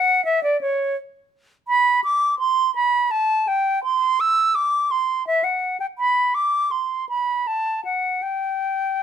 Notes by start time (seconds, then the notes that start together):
Already playing: F#5
0.25 E5
0.43 D5
0.61 C#5
1.68 B5
2.04 D6
2.39 C6
2.76 B5
3.11 A5
3.48 G5
3.84 C6
4.20 E6
4.55 D6
4.91 C6
5.27 E5
5.44 F#5
5.80 G5
5.99 B5
6.35 D6
6.71 C6
7.09 B5
7.47 A5
7.85 F#5
8.22 G5